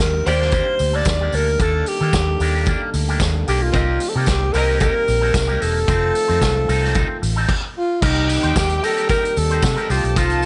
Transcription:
Already playing: D#3 G3 A#3 D4 G4 A#4
0.00 D#2
0.14 muted clean electric guitar stroke
0.26 D#2 A#3 D4 G4 C5 D5, open hi-hat, tambourine
0.40 A#3 D4 G4, snare
0.52 A#3 D4 G4, kick, closed hi-hat, tambourine
0.67 muted clean electric guitar stroke
0.79 D2, muted clean electric guitar stroke, open hi-hat, tambourine
0.93 A#3 D4 A4 D5
1.05 D#2, kick, snare, closed hi-hat, tambourine
1.21 A#3 D4 G4
1.32 D2 A#3 D4 A4 A#4, open hi-hat, tambourine
1.47 muted clean electric guitar stroke, tambourine
1.59 D#2 A#3 D4 A4, kick, closed hi-hat, tambourine
1.86 G4, muted clean electric guitar stroke, open hi-hat, tambourine
2.01 D#3 A#3 D4 A4
2.13 D#2, muted clean electric guitar stroke, kick, snare, closed hi-hat, tambourine
2.28 muted clean electric guitar stroke
2.40 D#2 A#3 D4 G4, open hi-hat, tambourine
2.55 A#3 D4 G4
2.66 A#3 D4 G4, kick, closed hi-hat, tambourine
2.82 muted clean electric guitar stroke
2.94 D2, muted clean electric guitar stroke, open hi-hat, tambourine
3.08 A#3 D4 G4, tambourine
3.20 D#2, kick, snare, closed hi-hat, tambourine
3.35 muted clean electric guitar stroke
3.47 B1 A#3 D4 G4, open hi-hat, tambourine
3.62 F4, muted clean electric guitar stroke
3.72 C2 A#3 C4 D#4 G4 A#4 D#5, kick, closed hi-hat, tambourine
4.00 muted clean electric guitar stroke, open hi-hat, tambourine
4.09 A4
4.15 C3 A#3 D#4 G4 A4
4.26 C2, muted clean electric guitar stroke, kick, snare, closed hi-hat, tambourine
4.42 muted clean electric guitar stroke
4.53 C2 A#3 C4 D#4 G4 A#4 D#5, open hi-hat, tambourine
4.68 A#3 D#4 G4
4.80 A#3 D#4 G4 A#4, kick, closed hi-hat, tambourine
4.94 muted clean electric guitar stroke
5.08 A#1, muted clean electric guitar stroke, open hi-hat, tambourine
5.21 A#3 D#4 A4
5.34 C2, muted clean electric guitar stroke, kick, snare, closed hi-hat, tambourine
5.47 A#3 D#4 G4, tambourine
5.61 E1 A#3 D#4 A4, open hi-hat, tambourine
5.74 muted clean electric guitar stroke, tambourine
5.88 F1 D#3 F3 A3 C4 D#4 F4 C5, kick, closed hi-hat, tambourine
6.14 muted clean electric guitar stroke, open hi-hat, tambourine
6.28 F2 C4 D#4 C5, tambourine
6.41 C2, muted clean electric guitar stroke, kick, snare, closed hi-hat, tambourine
6.56 muted clean electric guitar stroke
6.68 C2 C4 D#4 A4, open hi-hat, tambourine
6.82 C4 D#4 A4, snare
6.95 C4 D#4 A4, kick, closed hi-hat, tambourine
7.09 muted clean electric guitar stroke
7.22 A1, muted clean electric guitar stroke, open hi-hat, tambourine
7.36 C4 D#4 A4
7.49 kick, crash
7.76 F4
8.01 C2 D#3 G3 A#3 C4 D#4 G4 A#4 G5, kick, crash, tambourine
8.16 closed hi-hat
8.29 muted clean electric guitar stroke, open hi-hat, tambourine
8.43 D#2 D#4 G4 C5, closed hi-hat
8.56 D#2 G4, kick, snare, tambourine
8.70 muted clean electric guitar stroke, closed hi-hat
8.83 D#4 G4 A4 A#4, open hi-hat, tambourine
8.97 D#4 G4 A#4, closed hi-hat
9.09 D#4 G4 A#4, kick, closed hi-hat, tambourine
9.24 muted clean electric guitar stroke, closed hi-hat
9.37 D#2 A4, muted clean electric guitar stroke, open hi-hat, tambourine
9.51 D#4 G4 C5, closed hi-hat
9.62 C3, muted clean electric guitar stroke, kick, snare, tambourine
9.77 D#4 G4 A#4, closed hi-hat
9.90 C2 D#3 F3 D#4 F4 G4 A4 C5 A5, open hi-hat, tambourine
10.04 B1, muted clean electric guitar stroke, closed hi-hat
10.16 C2 D#4 F4 C5, kick, closed hi-hat, tambourine
10.30 closed hi-hat
10.42 tambourine

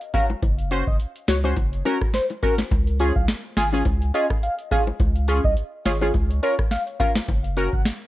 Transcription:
0.01 closed hi-hat
0.14 C#4 F#4 A#4 F5, kick, closed hi-hat, low bongo
0.30 high bongo
0.43 F#1, kick, closed hi-hat, high bongo
0.59 closed hi-hat
0.71 C#4 F#4 C5, closed hi-hat
0.87 F#1 D#5, kick
1.00 closed hi-hat
1.16 closed hi-hat
1.28 C#2 F#4 C#5, snare, closed hi-hat, high bongo
1.44 C#4 F#4 C5, high bongo
1.57 F#1, kick, closed hi-hat, high bongo
1.73 closed hi-hat
1.85 C#4 F#4 A#4, closed hi-hat, high bongo
2.02 kick, cross-stick
2.14 C5, snare, closed hi-hat
2.30 closed hi-hat, high bongo
2.43 C#4 F#4 A#4, kick, closed hi-hat, low bongo
2.58 snare, high bongo
2.71 C#2, kick, closed hi-hat, high bongo
2.87 closed hi-hat
3.00 C#4 F4 G#4, closed hi-hat
3.16 C2 F5, kick
3.28 snare, closed hi-hat
3.57 G#1 F4 G#4 G#5, snare, closed hi-hat
3.73 C#4 F4 G#4, high bongo
3.85 C#2, kick, closed hi-hat, high bongo
4.02 closed hi-hat
4.14 C#4 F4 G#4 D#5, closed hi-hat
4.30 kick, cross-stick
4.43 F5, closed hi-hat
4.59 closed hi-hat
4.71 C#4 F4 G#4 F5, kick, closed hi-hat, low bongo
4.87 high bongo
5.00 C#2, kick, closed hi-hat, high bongo
5.16 closed hi-hat
5.28 C#4 F4 G#4, closed hi-hat
5.44 C2 D#5, kick
5.57 closed hi-hat
5.85 G#1 F4 G#4 C#5, snare, closed hi-hat
6.01 C#4 F4 G#4, high bongo
6.14 C#2, kick, closed hi-hat, high bongo
6.30 closed hi-hat
6.43 C#4 F4 A#4 C#5, closed hi-hat
6.59 kick, cross-stick
6.71 F5, snare, closed hi-hat
6.87 closed hi-hat
7.00 C#4 F4 A#4 F5, kick, closed hi-hat, low bongo
7.16 snare, high bongo
7.28 F#1, kick, closed hi-hat, high bongo
7.44 closed hi-hat
7.57 C#4 F#4 A#4, closed hi-hat
7.73 F#1 F#5, kick
7.85 snare, closed hi-hat

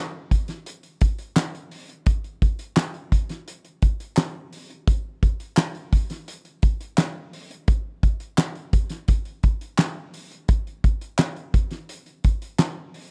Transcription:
0.31 kick, closed hi-hat
0.48 snare, closed hi-hat
0.66 closed hi-hat
0.83 closed hi-hat
1.01 kick, closed hi-hat
1.19 closed hi-hat
1.36 snare, clap, closed hi-hat
1.55 closed hi-hat
1.71 open hi-hat
1.89 closed hi-hat
2.06 kick, closed hi-hat
2.24 closed hi-hat
2.42 kick, closed hi-hat
2.59 closed hi-hat
2.76 snare, clap, closed hi-hat
2.94 closed hi-hat
3.12 kick, closed hi-hat
3.29 snare, closed hi-hat
3.48 closed hi-hat
3.65 closed hi-hat
3.82 kick, closed hi-hat
4.00 closed hi-hat
4.17 snare, clap, closed hi-hat
4.53 open hi-hat
4.70 closed hi-hat
4.88 kick, closed hi-hat
5.23 kick, closed hi-hat
5.40 closed hi-hat
5.57 snare, clap, closed hi-hat
5.75 closed hi-hat
5.93 kick, closed hi-hat
6.10 snare, closed hi-hat
6.28 closed hi-hat
6.45 closed hi-hat
6.62 kick, closed hi-hat
6.81 closed hi-hat
6.98 snare, clap, closed hi-hat
7.33 open hi-hat
7.51 closed hi-hat
7.68 kick, closed hi-hat
8.03 kick, closed hi-hat
8.20 closed hi-hat
8.38 snare, clap, closed hi-hat
8.55 closed hi-hat
8.73 kick, closed hi-hat
8.90 snare, closed hi-hat
9.08 kick, closed hi-hat
9.25 closed hi-hat
9.43 kick, closed hi-hat
9.61 closed hi-hat
9.78 snare, clap, closed hi-hat
10.14 open hi-hat
10.32 closed hi-hat
10.48 kick, closed hi-hat
10.67 closed hi-hat
10.84 kick, closed hi-hat
11.01 closed hi-hat
11.18 snare, clap, closed hi-hat
11.36 closed hi-hat
11.54 kick, closed hi-hat
11.71 snare, closed hi-hat
11.89 closed hi-hat
12.06 closed hi-hat
12.24 kick, closed hi-hat
12.42 closed hi-hat
12.59 snare, clap, closed hi-hat
12.94 open hi-hat

